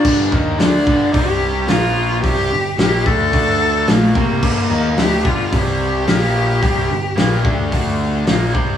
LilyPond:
<<
  \new Staff \with { instrumentName = "Cello" } { \time 4/4 \key g \minor \tempo 4 = 109 d'8 r8 d'4 g'4 f'4 | g'4 g'8 a'4. a8 bes8~ | bes4 g'8 f'8 g'2~ | g'2. r4 | }
  \new Staff \with { instrumentName = "Overdriven electric guitar" } { \clef bass \time 4/4 \key g \minor <g, d g>8 <ees bes ees'>8 <d a d'>8 <g, d g>8 <c g c'>4 <bes, f bes>4 | <c g c'>8 <g, d>8 <bes, f bes>8 <d a d'>8 <d a d'>4 <bes, f bes>8 <c g c'>8 | <g, d g>8 <ees bes ees'>8 <d a d'>8 <g, d g>8 <c g c'>4 <bes, f bes>4 | <c g c'>8 <g, d>8 <bes, f bes>8 <d a d'>8 <d a d'>4 <bes, f bes>8 <c g c'>8 | }
  \new Staff \with { instrumentName = "Picked electric bass" } { \clef bass \time 4/4 \key g \minor g,,8 ees,8 d,8 g,,8 c,4 bes,,4 | c,8 g,,8 bes,,8 d,8 d,4 bes,,8 c,8 | g,,8 ees,8 d,8 g,,8 c,4 bes,,4 | c,8 g,,8 bes,,8 d,8 d,4 bes,,8 c,8 | }
  \new DrumStaff \with { instrumentName = "Drums" } \drummode { \time 4/4 <cymc bd>8 bd8 <hho sn>8 bd8 <hho bd>4 <hho sn>4 | <hho bd>4 <hho sn>8 bd8 <hho bd>4 <hho sn>8 bd8 | <cymc bd>4 <hho sn>8 bd8 <hho bd>4 <hho sn>4 | <hho bd>4 <hho sn>8 bd8 <hho bd>4 <hho sn>8 bd8 | }
>>